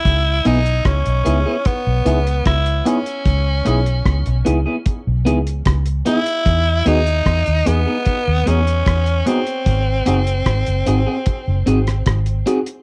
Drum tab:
HH |x-xxxxx-x-xxxxxx|x-xxxxx-x-xxxxxx|x-xxxxx-x-xxxxxx|x-xxxxx-x-xxxxxx|
SD |----r-------r---|----r-------r---|----r-------r---|----r------rr---|
BD |o---o---o---o---|o---o---o---o---|o---o---o---o---|o---o---o---o---|